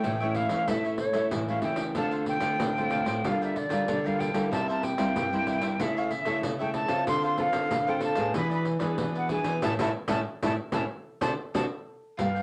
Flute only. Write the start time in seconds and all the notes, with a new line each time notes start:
Already playing: G5
0.36 F5
0.68 E5
0.99 C#5
1.48 F5
1.63 G5
1.97 A5
2.29 G5
3.27 F5
3.45 E5
3.57 D5
4.06 F5
4.20 G5
4.52 A5
4.71 A5
4.84 G5
5.81 E5
5.98 F5
6.11 E5
6.60 G5
6.74 A5
7.08 C6
7.25 C6
7.41 F5
7.90 G5
8.04 A5
8.37 B5
8.54 B5
9.17 F#5
9.32 G#5
9.64 A5
9.82 A5
10.10 A5
10.45 A5
10.73 A5
11.22 A5
11.56 A5
12.20 F5